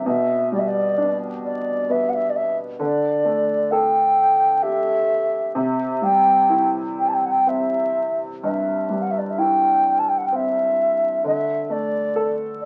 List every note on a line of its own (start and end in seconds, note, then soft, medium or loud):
0.06 2.76 B2 medium
0.06 0.50 E5 medium
0.52 2.30 G3 soft
0.52 0.60 D5 medium
0.59 0.70 E5 medium
0.68 1.19 D5 medium
0.98 2.76 D4 soft
1.45 1.93 D5 medium
1.89 2.77 B3 soft
1.89 2.11 E5 medium
2.09 2.16 F#5 soft
2.14 2.31 E5 medium
2.30 2.38 D5 medium
2.36 2.58 E5 medium
2.79 5.52 D3 medium
2.84 3.73 D5 medium
3.25 5.05 A3 soft
3.71 5.53 A4 soft
3.71 4.64 G5 medium
4.63 5.54 G4 soft
4.63 5.56 E5 medium
5.55 8.40 C3 medium
5.55 6.05 E5 medium
6.02 7.92 G3 soft
6.02 6.71 G5 medium
6.49 8.40 E4 soft
6.99 7.10 G5 medium
7.09 7.15 A5 soft
7.14 7.27 G5 medium
7.26 7.33 F#5 medium
7.31 7.50 G5 medium
7.47 9.35 C4 soft
7.47 8.21 E5 medium
8.43 11.21 G2 medium
8.43 9.03 E5 medium
8.89 10.75 G3 soft
9.02 9.13 F#5 medium
9.11 9.20 E5 medium
9.18 9.32 D5 medium
9.30 9.40 E5 medium
9.38 11.21 E4 soft
9.38 10.01 G5 medium
9.99 10.10 A5 medium
10.09 10.19 G5 medium
10.18 10.28 F#5 medium
10.27 10.37 G5 medium
10.32 11.22 C4 soft
10.32 11.26 E5 medium
11.24 12.65 D3 medium
11.24 11.73 E5 medium
11.70 12.65 A3 soft
11.70 12.36 D5 medium
12.16 12.65 A4 medium
12.62 12.65 D5 medium